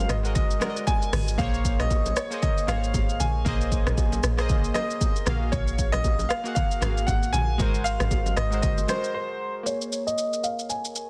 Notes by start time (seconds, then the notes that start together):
Already playing: G#3 F#4 A#4 C5 F5
0.09 G#1 D#5, cross-stick, low bongo, shaker
0.23 G#3 F#4 A#4 D#5, shaker
0.35 D#5, kick, low conga, shaker
0.51 shaker
0.60 G#3 F#4 A#4 D5, cross-stick, low bongo, shaker
0.70 D#5
0.77 shaker
0.87 G#5, kick, high bongo, shaker
1.02 shaker
1.13 G#1, cross-stick, open hi-hat, high bongo, low conga, shaker
1.28 shaker
1.38 A#1 A#3 G#4 C5 C#5 F5, kick, low conga, shaker
1.54 shaker
1.65 kick, shaker
1.80 A#1 D#5, cross-stick, low bongo, shaker
1.91 kick, high bongo, shaker
2.06 low bongo, shaker
2.16 C#5, cross-stick, shaker
2.30 A#3 G#4 C5 D#5, shaker
2.43 D#5, kick, low conga, shaker
2.58 shaker
2.67 G#1 A#3 G#4 C5 C#5 F5, cross-stick, low bongo, shaker
2.84 shaker
2.94 G#1, kick, high bongo, shaker
3.09 shaker
3.20 A#1 G#5, high bongo, low conga, shaker
3.45 A#1 A#3 G#4 C5 D#5, kick, low conga, shaker
3.61 shaker
3.72 kick, shaker
3.87 A#1, cross-stick, low bongo, shaker
3.98 kick, high bongo, shaker
4.12 low bongo, shaker
4.23 A#1, cross-stick, shaker
4.37 A#3 G#4 C5 D#5, cross-stick, shaker
4.49 kick, low conga, shaker
4.64 shaker
4.74 A#3 G#4 C5 D#5, cross-stick, low bongo, shaker
4.90 shaker
5.01 kick, high bongo, shaker
5.16 shaker
5.26 A#1 A#3 F#4 G#4 F5, cross-stick, high bongo, low conga, shaker
5.52 A#1 C#5, kick, low conga, shaker
5.68 shaker
5.79 kick, shaker
5.92 A#1 D#5, cross-stick, low bongo, shaker
6.04 kick, high bongo, shaker
6.19 low bongo, shaker
6.29 F5, cross-stick, shaker
6.44 A#3 F#4 G#4 F#5, shaker
6.55 F5, kick, low conga, shaker
6.71 shaker
6.81 G#1 A#3 F#4 G#4 F5, cross-stick, low bongo, shaker
6.97 shaker
7.07 G#1 F#5, kick, high bongo, shaker
7.23 shaker
7.33 A#1 G#5, high bongo, low conga, shaker
7.58 G#1 G#3 F#4 A#4 C5, kick, low conga, shaker
7.74 shaker
7.84 F5, shaker
8.00 G#1, cross-stick, low bongo, shaker
8.11 kick, high bongo, shaker
8.26 low bongo, shaker
8.37 G#1 D#5, cross-stick, shaker
8.51 G#3 F#4 A#4 C5, shaker
8.62 D#5, kick, low conga, shaker
8.78 high bongo, shaker
8.88 G#3 F#4 A#4 C5, cross-stick, low bongo, shaker
9.04 shaker
9.14 C5
9.63 A#3 G#4 C#5, shaker
9.68 A#4 C#5
9.82 shaker
9.93 shaker
10.07 D#5, shaker
10.18 shaker
10.33 shaker
10.43 F5, shaker
10.59 shaker
10.69 G#5, shaker
10.85 shaker
10.96 shaker